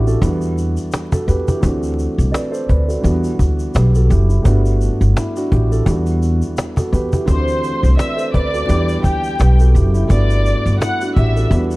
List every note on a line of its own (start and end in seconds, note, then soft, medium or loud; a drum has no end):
0.00 0.14 A1 medium
0.00 0.18 G3 medium
0.00 0.18 A3 medium
0.00 0.19 B3 medium
0.00 0.24 D4 medium
0.00 0.24 E4 medium
0.00 0.08 F#4 medium
0.00 0.24 G4 medium
0.07 0.24 F#4 medium
0.07 0.40 A4 medium
0.07 shaker soft
0.21 0.76 E2 loud
0.21 1.59 E3 medium
0.21 1.60 G3 medium
0.21 1.61 B3 medium
0.21 1.62 D4 medium
0.21 cajon bass loud
0.21 cajon slap medium
0.21 shaker medium
0.26 0.58 F#4 medium
0.42 shaker medium
0.56 cajon slap soft
0.56 shaker medium
0.77 shaker soft
0.92 cajon slap loud
0.92 cajon slap medium
0.92 shaker medium
1.12 1.28 F#4 medium
1.12 1.28 A4 medium
1.12 cajon bass loud
1.12 shaker medium
1.28 1.43 E2 loud
1.28 1.46 G4 medium
1.28 1.47 B4 medium
1.28 cajon slap soft
1.28 shaker medium
1.47 1.81 E4 medium
1.47 1.81 G4 medium
1.47 cajon bass loud
1.47 shaker soft
1.60 2.05 D2 loud
1.60 3.00 E3 medium
1.60 3.00 A3 medium
1.60 3.01 C4 medium
1.60 3.02 D4 medium
1.60 cajon bass loud
1.60 shaker medium
1.65 2.33 F#4 medium
1.83 shaker medium
1.98 cajon slap soft
1.98 shaker medium
2.18 2.30 C2 medium
2.18 shaker medium
2.32 2.52 B4 medium
2.32 2.52 D5 medium
2.32 cajon slap loud
2.32 cajon slap medium
2.32 shaker medium
2.51 2.67 A4 medium
2.51 2.67 C5 medium
2.51 shaker medium
2.69 2.96 D2 medium
2.69 2.88 B4 medium
2.69 cajon bass medium
2.88 3.04 F#4 medium
2.88 3.22 A4 medium
2.88 shaker soft
3.01 3.31 E2 loud
3.01 4.41 E3 medium
3.01 4.41 G3 medium
3.01 4.42 B3 medium
3.01 4.43 D4 medium
3.01 cajon slap medium
3.01 shaker medium
3.06 3.74 F#4 medium
3.24 shaker medium
3.39 3.66 D2 medium
3.39 cajon bass medium
3.39 shaker medium
3.59 shaker medium
3.74 4.12 B1 loud
3.74 3.94 G4 medium
3.74 3.94 B4 medium
3.74 cajon slap loud
3.74 cajon slap medium
3.74 shaker medium
3.95 4.10 F#4 medium
3.95 4.10 A4 medium
3.95 shaker medium
4.10 4.37 F#1 loud
4.10 4.28 E4 medium
4.10 4.29 G4 medium
4.10 cajon slap soft
4.10 shaker soft
4.29 4.63 E4 medium
4.29 shaker medium
4.43 4.88 G1 loud
4.43 5.82 G3 medium
4.43 5.83 A3 medium
4.43 5.83 B3 medium
4.43 5.15 D4 medium
4.43 cajon bass loud
4.43 shaker medium
4.47 5.16 F#4 medium
4.66 shaker medium
4.80 cajon slap soft
4.80 shaker medium
5.01 5.12 G1 medium
5.01 shaker soft
5.17 5.36 E4 medium
5.17 cajon slap loud
5.17 cajon slap medium
5.17 shaker medium
5.36 5.51 D4 medium
5.36 5.51 F#4 medium
5.36 shaker medium
5.51 5.79 A1 loud
5.51 5.71 E4 medium
5.51 5.70 G4 medium
5.51 cajon bass medium
5.72 5.89 F#4 medium
5.72 6.05 A4 medium
5.72 shaker soft
5.86 6.40 E2 loud
5.86 7.24 E3 medium
5.86 7.25 G3 medium
5.86 7.26 B3 medium
5.86 7.26 D4 medium
5.86 cajon bass loud
5.86 cajon slap medium
5.86 shaker medium
5.90 6.23 F#4 medium
6.06 shaker medium
6.21 cajon slap soft
6.21 shaker medium
6.42 shaker soft
6.57 cajon slap loud
6.57 cajon slap medium
6.57 shaker medium
6.77 6.92 F#4 medium
6.77 6.92 A4 medium
6.77 cajon bass loud
6.77 shaker medium
6.92 7.08 E2 loud
6.92 7.11 G4 medium
6.92 7.11 B4 medium
6.92 shaker medium
7.12 7.46 E4 medium
7.12 7.46 G4 medium
7.12 cajon bass loud
7.12 shaker soft
7.25 7.70 D2 loud
7.25 8.64 E3 medium
7.25 8.65 A3 medium
7.25 8.66 C4 medium
7.25 8.67 D4 medium
7.25 7.94 C5 loud
7.25 7.95 C6 medium
7.25 cajon bass loud
7.25 shaker medium
7.30 7.98 F#4 medium
7.48 shaker medium
7.63 cajon slap soft
7.63 shaker medium
7.83 7.95 C2 medium
7.83 shaker soft
7.97 8.17 B4 medium
7.97 8.17 D5 medium
7.97 8.30 E5 medium
7.97 8.31 E6 medium
7.97 cajon slap loud
7.97 cajon slap medium
7.97 shaker medium
8.16 8.32 A4 medium
8.16 8.31 C5 medium
8.16 shaker medium
8.33 8.61 D2 medium
8.33 8.53 B4 medium
8.33 9.00 D5 medium
8.33 9.01 D6 medium
8.33 cajon bass medium
8.53 8.87 F#4 medium
8.53 8.87 A4 medium
8.53 shaker soft
8.66 8.96 E2 loud
8.66 10.06 E3 medium
8.66 10.06 G3 medium
8.66 10.07 B3 medium
8.66 10.07 D4 medium
8.66 shaker medium
8.70 9.38 G4 medium
8.89 shaker medium
9.04 9.31 D2 medium
9.04 9.56 G4 medium
9.04 9.56 G5 medium
9.04 cajon bass medium
9.04 shaker medium
9.24 shaker medium
9.39 9.76 B1 loud
9.39 9.58 G4 medium
9.39 9.58 B4 medium
9.39 cajon slap loud
9.39 cajon slap medium
9.39 shaker medium
9.60 9.75 F#4 medium
9.60 9.74 A4 medium
9.60 shaker medium
9.75 10.02 F#1 loud
9.75 9.92 E4 medium
9.75 9.94 G4 medium
9.75 cajon slap soft
9.75 shaker medium
9.94 10.28 E4 medium
9.94 shaker medium
10.07 10.52 G1 loud
10.07 11.47 G3 medium
10.07 11.48 A3 medium
10.07 11.48 B3 medium
10.07 10.80 D4 medium
10.07 10.76 D5 loud
10.07 10.77 D6 medium
10.07 cajon bass loud
10.07 shaker medium
10.12 10.80 F#4 medium
10.30 shaker medium
10.46 shaker medium
10.66 10.77 G1 loud
10.66 shaker soft
10.80 11.00 E4 medium
10.80 11.12 F#5 medium
10.80 11.13 F#6 medium
10.80 cajon slap loud
10.80 cajon slap medium
10.80 shaker medium
11.01 11.16 D4 medium
11.01 11.16 F#4 medium
11.01 shaker medium
11.15 11.43 A1 loud
11.15 11.35 E4 medium
11.15 11.35 G4 medium
11.15 11.47 E5 medium
11.15 11.48 E6 medium
11.15 cajon bass medium
11.36 11.53 F#4 medium
11.36 11.70 A4 medium
11.36 shaker medium
11.50 11.76 E2 loud
11.50 11.76 E3 medium
11.50 11.76 G3 medium
11.50 11.76 B3 medium
11.50 11.76 D4 medium
11.50 cajon bass loud
11.50 cajon slap medium
11.50 shaker medium
11.55 11.76 F#4 medium
11.71 shaker medium